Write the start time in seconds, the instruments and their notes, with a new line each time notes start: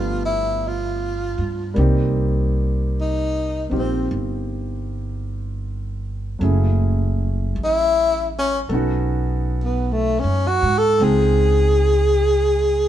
Already playing: upright bass G1, grand piano F3 A3 B3 D4 G4, tenor saxophone F4
0.25 tenor saxophone E4
0.68 tenor saxophone F4
1.38 upright bass G2
1.74 upright bass C2, grand piano G3 A#3 C4 D#4
1.79 grand piano G4
3.00 tenor saxophone D#4
3.70 upright bass A#1, grand piano C4 D#4 F4 G4
3.78 tenor saxophone C4
4.11 upright bass G1
6.39 upright bass F#1, grand piano F#3 A3 C#4 E4
6.44 grand piano G#4
7.56 upright bass A1
7.64 tenor saxophone E4
8.39 tenor saxophone C#4
8.69 upright bass B1, grand piano B3 C#4 D#4 A4
8.74 grand piano F#4
9.64 tenor saxophone B3
9.92 tenor saxophone A3
10.20 upright bass F#2, tenor saxophone C#4
10.47 tenor saxophone F#4
10.62 upright bass G#2
10.78 tenor saxophone A4
11.00 upright bass C#2, grand piano G#3 C4 D#4 F4 G5, tenor saxophone G#4